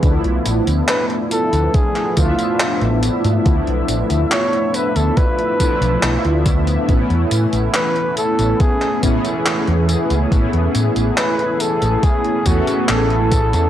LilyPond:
<<
  \new Staff \with { instrumentName = "Flugelhorn" } { \time 4/4 \key a \major \tempo 4 = 70 r4 b'8 a'8 gis'8 f'4 r8 | r4 cis''8 b'16 a'16 b'4. r8 | r4 b'8 a'8 gis'8 e'4 r8 | r4 b'8 a'8 gis'8 fis'8 a'4 | }
  \new Staff \with { instrumentName = "Analog polysynth" } { \time 4/4 \key a \major <f a b d' e'>2~ <f a b d' e'>8 <f a b d' e''>4. | <f a b d' e'>2~ <f a b d' e'>8 <f a b d' e'>4. | <e a b cis' e'>2~ <e a b cis' e'>8 <e a b cis' gis'>4. | <e a b cis' e'>2~ <e a b cis' e'>8 <e a b cis' a'>4. | }
  \new Staff \with { instrumentName = "Fingered electric bass" } { \clef bass \time 4/4 \key a \major d,16 b,,16 a,,16 d,16 r8. d,16 r8 d,16 r8 a,,16 r16 gis,16 | d,16 b,,16 a,,16 d,16 r8. d,16 r8. b,,16 b,,16 d,8 r16 | a,,16 e,16 a,16 a,,16 r8. a,,16 r8 a,,16 r8 e,16 r16 cis,16 | a,,16 e,16 a,16 a,,16 r8. a,,16 r8 e,16 r16 a,,8. e,16 | }
  \new DrumStaff \with { instrumentName = "Drums" } \drummode { \time 4/4 <hh bd tamb>16 hh16 <hh tamb>16 <hh tamb>16 <hc hh tamb>16 hh16 <hh tamb>16 <hh tamb>16 <hh bd tamb>16 <hc hh>16 <hh bd tamb>16 <hh tamb>16 <hc hh tamb>16 hh16 <hh tamb>16 <hh tamb>16 | <hh bd tamb>16 hh16 <hh tamb>16 <hh tamb>16 <hc hh tamb>16 hh16 <hh tamb>16 <hh tamb>16 <hh bd tamb>16 hh16 <hh bd tamb>16 <hh tamb>16 <hc hh tamb>16 hh16 <hh bd tamb>16 <hh tamb>16 | <hh bd tamb>16 hh16 <hh tamb>16 <hh tamb>16 <hc hh tamb>16 hh16 <hh tamb>16 <hh tamb>16 <hh bd tamb>16 <hc hh>16 <hh bd tamb>16 <hh tamb>16 <hc hh tamb>16 hh16 <hh tamb>16 <hh tamb>16 | <hh bd tamb>16 hh16 <hh tamb>16 <hh tamb>16 <hc hh tamb>16 hh16 <hh tamb>16 <hh tamb>16 <hh bd tamb>16 hh16 <hh bd tamb>16 <hh tamb>16 <hc hh tamb>16 hh16 <hh bd tamb>16 <hh tamb>16 | }
>>